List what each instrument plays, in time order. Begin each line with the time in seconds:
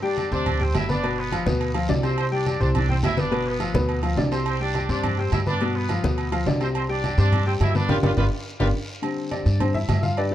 0.02 upright piano G3 G4 G5, trumpet section D4 D5, high conga
0.17 high conga, low timbale, low agogo, short guiro
0.32 upright bass D2, upright piano C3 C4 C5, trumpet section D4 D5, short guiro
0.46 high conga, low conga, low agogo, long guiro
0.60 upright piano G3 G4 G5, trumpet section C4 C5, high conga, low conga
0.75 upright bass G1, trumpet section E4 E5, high conga, low timbale, low agogo, short guiro
0.89 upright piano B3 B4 B5, trumpet section D4 D5, high conga, short guiro
1.03 upright piano B2 B3 B4, high conga, low agogo, long guiro
1.18 trumpet section B3 B4, high conga
1.32 upright piano F3 F4 F5, high conga, low timbale, low agogo, short guiro
1.46 upright bass D2, upright piano B2 B3 B4, high conga, short guiro
1.61 high conga, low agogo, long guiro
1.74 upright piano F3 F4 F5, high conga, low agogo
1.89 upright bass C2, upright piano D3 D4 D5, high conga, low timbale, short guiro
2.03 upright piano C3 C4 C5, trumpet section C4 C5, high conga, low agogo, short guiro
2.18 trumpet section C4 C5, high conga, low agogo, long guiro
2.31 upright piano G3 G4 G5, trumpet section D4 D5, high conga
2.46 trumpet section D4 D5, high conga, low timbale, low agogo, short guiro
2.60 upright bass C2, upright piano C3 C4 C5, trumpet section D4 D5, high conga, short guiro
2.75 trumpet section D4 D5, high conga, low conga, low agogo, long guiro
2.88 upright piano G3 G4 G5, trumpet section C4 C5, high conga, low conga
3.03 upright bass G1, trumpet section E4 E5, high conga, low timbale, low agogo, short guiro
3.17 upright piano B3 B4 B5, trumpet section D4 D5, high conga, short guiro
3.31 upright piano B2 B3 B4, high conga, low agogo, long guiro
3.46 trumpet section B3 B4, high conga
3.60 upright piano F3 F4 F5, high conga, low timbale, low agogo, short guiro
3.74 upright bass D2, upright piano B2 B3 B4, high conga, short guiro
3.89 high conga, low agogo, long guiro
4.03 upright piano F3 F4 F5, high conga, low agogo
4.17 upright bass C2, upright piano D3 D4 D5, high conga, low timbale, short guiro
4.31 upright piano C3 C4 C5, trumpet section C4 C5, high conga, low agogo, short guiro
4.46 trumpet section C4 C5, high conga, low agogo, long guiro
4.60 upright piano G3 G4 G5, trumpet section D4 D5, high conga
4.75 high conga, low timbale, low agogo, short guiro
4.89 upright bass G2, upright piano C3 C4 C5, trumpet section D4 D5, high conga, short guiro
5.03 high conga, low conga, low agogo, long guiro
5.18 upright piano G3 G4 G5, trumpet section C4 C5, high conga
5.32 upright bass G2, trumpet section E4 E5, high conga, low timbale, low agogo, short guiro
5.46 upright piano B3 B4 B5, trumpet section D4 D5, high conga, short guiro
5.61 upright piano B2 B3 B4, low agogo, long guiro
5.74 trumpet section B3 B4, high conga
5.89 upright piano F3 F4 F5, high conga, low timbale, low agogo, short guiro
6.03 upright bass D2, upright piano B2 B3 B4, high conga, short guiro
6.18 high conga, low agogo, long guiro
6.32 upright piano F3 F4 F5, high conga, low agogo
6.46 upright bass C2, upright piano D3 D4 D5, high conga, low timbale, short guiro
6.60 upright piano C3 C4 C5, trumpet section C4 C5, high conga, low agogo, short guiro
6.75 trumpet section C4 C5, high conga, low agogo, long guiro
6.89 upright piano G3 G4 G5, trumpet section D4 D5, high conga
7.04 high conga, low timbale, low agogo, short guiro
7.18 upright bass G2, upright piano C3 C4 C5, trumpet section D4 D5, short guiro
7.32 high conga, low conga, low agogo, long guiro
7.46 upright piano G3 G4 G5, trumpet section C4 C5, high conga
7.60 upright bass G2, trumpet section E4 E5, high conga, low timbale, low agogo, short guiro
7.75 upright piano B3 B4 B5, trumpet section D4 D5, high conga, short guiro
7.89 upright bass G1, upright piano D4 F4 G4, trumpet section F4 G4 B4, high conga, high timbale, long guiro
8.03 upright bass G1, upright piano D4 F4 G4, trumpet section F4 G4 B4, high conga, high timbale, long guiro
8.17 upright bass G1, upright piano D4 F4 G4, trumpet section F4 G4 B4, high conga, high timbale, long guiro
8.60 upright bass G1, upright piano D4 F4 G4, trumpet section F4 G4 B4, high conga, high timbale, long guiro
9.02 upright piano D3 G3 C4, high conga, low agogo, long guiro
9.17 high conga
9.31 upright piano D4 G4 D5, high conga, low timbale, low agogo, short guiro
9.46 upright bass G2, high conga, short guiro
9.60 upright piano D3 G3 C4 G4 C5, high conga, low conga, low agogo, long guiro
9.74 upright piano E4 E5, high conga, low conga
9.89 upright bass G2, high conga, low timbale, low agogo, short guiro
10.03 upright piano F4 F5, high conga, short guiro
10.17 upright piano D4 G4 B4 D5, high conga, low agogo, long guiro
10.31 upright piano F3, high conga